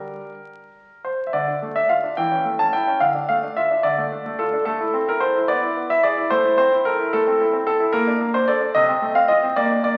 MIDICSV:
0, 0, Header, 1, 2, 480
1, 0, Start_track
1, 0, Key_signature, -1, "minor"
1, 0, Tempo, 583090
1, 1097, Time_signature, 6, 3, 24, 8
1, 1098, Tempo, 557621
1, 3018, Tempo, 545455
1, 8655, End_track
2, 0, Start_track
2, 0, Title_t, "Grand piano"
2, 0, Program_c, 0, 0
2, 0, Note_on_c, 0, 55, 37
2, 0, Note_on_c, 0, 62, 32
2, 0, Note_on_c, 0, 67, 32
2, 0, Note_on_c, 0, 70, 54
2, 162, Note_off_c, 0, 55, 0
2, 236, Note_off_c, 0, 62, 0
2, 237, Note_off_c, 0, 67, 0
2, 830, Note_off_c, 0, 70, 0
2, 860, Note_on_c, 0, 72, 59
2, 967, Note_off_c, 0, 72, 0
2, 1044, Note_on_c, 0, 76, 39
2, 1096, Note_on_c, 0, 74, 73
2, 1099, Note_on_c, 0, 50, 54
2, 1100, Note_off_c, 0, 76, 0
2, 1214, Note_off_c, 0, 50, 0
2, 1223, Note_on_c, 0, 62, 44
2, 1312, Note_off_c, 0, 74, 0
2, 1346, Note_off_c, 0, 62, 0
2, 1346, Note_on_c, 0, 57, 41
2, 1461, Note_on_c, 0, 62, 42
2, 1461, Note_on_c, 0, 76, 76
2, 1468, Note_off_c, 0, 57, 0
2, 1578, Note_on_c, 0, 77, 75
2, 1580, Note_off_c, 0, 76, 0
2, 1584, Note_on_c, 0, 65, 43
2, 1586, Note_off_c, 0, 62, 0
2, 1700, Note_on_c, 0, 62, 41
2, 1707, Note_off_c, 0, 65, 0
2, 1818, Note_off_c, 0, 77, 0
2, 1819, Note_off_c, 0, 62, 0
2, 1819, Note_on_c, 0, 79, 83
2, 1823, Note_on_c, 0, 52, 59
2, 1937, Note_off_c, 0, 52, 0
2, 1943, Note_on_c, 0, 61, 42
2, 2033, Note_off_c, 0, 79, 0
2, 2059, Note_on_c, 0, 57, 40
2, 2065, Note_off_c, 0, 61, 0
2, 2181, Note_on_c, 0, 81, 80
2, 2183, Note_off_c, 0, 57, 0
2, 2184, Note_on_c, 0, 61, 41
2, 2298, Note_off_c, 0, 81, 0
2, 2299, Note_on_c, 0, 79, 81
2, 2304, Note_on_c, 0, 64, 46
2, 2305, Note_off_c, 0, 61, 0
2, 2425, Note_on_c, 0, 61, 44
2, 2426, Note_off_c, 0, 64, 0
2, 2536, Note_on_c, 0, 77, 81
2, 2538, Note_off_c, 0, 79, 0
2, 2538, Note_on_c, 0, 50, 58
2, 2541, Note_off_c, 0, 61, 0
2, 2654, Note_off_c, 0, 50, 0
2, 2661, Note_on_c, 0, 62, 45
2, 2753, Note_off_c, 0, 77, 0
2, 2779, Note_on_c, 0, 77, 82
2, 2785, Note_off_c, 0, 62, 0
2, 2785, Note_on_c, 0, 57, 45
2, 2906, Note_on_c, 0, 62, 45
2, 2908, Note_off_c, 0, 57, 0
2, 3018, Note_off_c, 0, 77, 0
2, 3019, Note_on_c, 0, 76, 76
2, 3026, Note_on_c, 0, 65, 43
2, 3028, Note_off_c, 0, 62, 0
2, 3143, Note_on_c, 0, 62, 44
2, 3150, Note_off_c, 0, 65, 0
2, 3255, Note_on_c, 0, 74, 85
2, 3261, Note_off_c, 0, 76, 0
2, 3261, Note_on_c, 0, 50, 51
2, 3269, Note_off_c, 0, 62, 0
2, 3378, Note_off_c, 0, 50, 0
2, 3384, Note_on_c, 0, 57, 48
2, 3509, Note_on_c, 0, 62, 44
2, 3510, Note_off_c, 0, 57, 0
2, 3629, Note_on_c, 0, 57, 45
2, 3632, Note_off_c, 0, 62, 0
2, 3741, Note_off_c, 0, 74, 0
2, 3743, Note_on_c, 0, 69, 79
2, 3751, Note_on_c, 0, 65, 46
2, 3754, Note_off_c, 0, 57, 0
2, 3869, Note_on_c, 0, 62, 48
2, 3875, Note_off_c, 0, 65, 0
2, 3963, Note_off_c, 0, 69, 0
2, 3976, Note_on_c, 0, 69, 82
2, 3983, Note_on_c, 0, 57, 59
2, 3989, Note_off_c, 0, 62, 0
2, 4103, Note_off_c, 0, 57, 0
2, 4109, Note_on_c, 0, 64, 48
2, 4225, Note_on_c, 0, 60, 47
2, 4236, Note_off_c, 0, 64, 0
2, 4345, Note_off_c, 0, 69, 0
2, 4354, Note_off_c, 0, 60, 0
2, 4354, Note_on_c, 0, 64, 44
2, 4357, Note_on_c, 0, 70, 77
2, 4461, Note_on_c, 0, 72, 77
2, 4469, Note_on_c, 0, 69, 46
2, 4474, Note_off_c, 0, 70, 0
2, 4478, Note_off_c, 0, 64, 0
2, 4592, Note_on_c, 0, 64, 47
2, 4595, Note_off_c, 0, 69, 0
2, 4608, Note_off_c, 0, 72, 0
2, 4705, Note_on_c, 0, 74, 88
2, 4710, Note_on_c, 0, 59, 64
2, 4711, Note_off_c, 0, 64, 0
2, 4826, Note_off_c, 0, 59, 0
2, 4833, Note_on_c, 0, 64, 47
2, 4956, Note_on_c, 0, 59, 44
2, 4957, Note_off_c, 0, 64, 0
2, 5067, Note_off_c, 0, 74, 0
2, 5073, Note_on_c, 0, 64, 47
2, 5074, Note_on_c, 0, 76, 84
2, 5079, Note_off_c, 0, 59, 0
2, 5191, Note_off_c, 0, 76, 0
2, 5191, Note_on_c, 0, 74, 88
2, 5195, Note_on_c, 0, 68, 53
2, 5196, Note_off_c, 0, 64, 0
2, 5315, Note_on_c, 0, 64, 50
2, 5318, Note_off_c, 0, 68, 0
2, 5429, Note_on_c, 0, 72, 93
2, 5430, Note_off_c, 0, 74, 0
2, 5432, Note_off_c, 0, 64, 0
2, 5435, Note_on_c, 0, 57, 66
2, 5549, Note_off_c, 0, 57, 0
2, 5558, Note_on_c, 0, 64, 52
2, 5657, Note_off_c, 0, 72, 0
2, 5670, Note_on_c, 0, 72, 90
2, 5675, Note_on_c, 0, 60, 50
2, 5681, Note_off_c, 0, 64, 0
2, 5797, Note_on_c, 0, 64, 50
2, 5800, Note_off_c, 0, 60, 0
2, 5815, Note_off_c, 0, 72, 0
2, 5911, Note_on_c, 0, 70, 83
2, 5916, Note_on_c, 0, 69, 53
2, 5921, Note_off_c, 0, 64, 0
2, 6037, Note_on_c, 0, 64, 47
2, 6041, Note_off_c, 0, 69, 0
2, 6153, Note_off_c, 0, 70, 0
2, 6156, Note_on_c, 0, 69, 93
2, 6160, Note_on_c, 0, 57, 60
2, 6161, Note_off_c, 0, 64, 0
2, 6273, Note_off_c, 0, 57, 0
2, 6282, Note_on_c, 0, 60, 51
2, 6397, Note_on_c, 0, 64, 50
2, 6402, Note_off_c, 0, 60, 0
2, 6440, Note_off_c, 0, 69, 0
2, 6511, Note_on_c, 0, 60, 49
2, 6519, Note_off_c, 0, 64, 0
2, 6628, Note_on_c, 0, 69, 90
2, 6634, Note_off_c, 0, 60, 0
2, 6744, Note_on_c, 0, 64, 53
2, 6769, Note_off_c, 0, 69, 0
2, 6856, Note_on_c, 0, 70, 95
2, 6862, Note_on_c, 0, 58, 68
2, 6863, Note_off_c, 0, 64, 0
2, 6977, Note_off_c, 0, 58, 0
2, 6987, Note_on_c, 0, 62, 53
2, 7072, Note_off_c, 0, 70, 0
2, 7106, Note_on_c, 0, 58, 51
2, 7109, Note_off_c, 0, 62, 0
2, 7222, Note_on_c, 0, 72, 83
2, 7223, Note_on_c, 0, 62, 54
2, 7228, Note_off_c, 0, 58, 0
2, 7341, Note_off_c, 0, 72, 0
2, 7341, Note_on_c, 0, 74, 87
2, 7347, Note_off_c, 0, 62, 0
2, 7348, Note_on_c, 0, 69, 55
2, 7459, Note_on_c, 0, 62, 51
2, 7469, Note_off_c, 0, 69, 0
2, 7555, Note_off_c, 0, 74, 0
2, 7577, Note_on_c, 0, 75, 101
2, 7578, Note_off_c, 0, 62, 0
2, 7585, Note_on_c, 0, 48, 68
2, 7697, Note_off_c, 0, 48, 0
2, 7705, Note_on_c, 0, 60, 51
2, 7819, Note_on_c, 0, 57, 49
2, 7826, Note_off_c, 0, 60, 0
2, 7899, Note_off_c, 0, 75, 0
2, 7933, Note_on_c, 0, 60, 51
2, 7935, Note_on_c, 0, 77, 91
2, 7942, Note_off_c, 0, 57, 0
2, 8050, Note_on_c, 0, 75, 93
2, 8055, Note_off_c, 0, 77, 0
2, 8057, Note_on_c, 0, 65, 54
2, 8060, Note_off_c, 0, 60, 0
2, 8181, Note_on_c, 0, 60, 54
2, 8183, Note_off_c, 0, 65, 0
2, 8294, Note_off_c, 0, 75, 0
2, 8297, Note_on_c, 0, 74, 100
2, 8299, Note_off_c, 0, 60, 0
2, 8301, Note_on_c, 0, 58, 66
2, 8416, Note_off_c, 0, 58, 0
2, 8428, Note_on_c, 0, 62, 51
2, 8514, Note_off_c, 0, 74, 0
2, 8541, Note_on_c, 0, 74, 92
2, 8548, Note_on_c, 0, 58, 50
2, 8549, Note_off_c, 0, 62, 0
2, 8655, Note_off_c, 0, 58, 0
2, 8655, Note_off_c, 0, 74, 0
2, 8655, End_track
0, 0, End_of_file